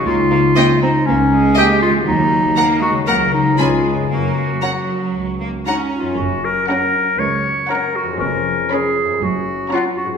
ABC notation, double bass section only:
X:1
M:4/4
L:1/8
Q:1/4=118
K:Ebdor
V:1 name="Double bass section" clef=bass
D,,2 z2 D,,2 z2 | [K:F#] D,,2 z2 C,,2 C,,2 | F,,2 z2 C,,2 z2 | F,,,2 z2 C,,2 z2 |
E,,,2 z2 F,,,2 z2 |]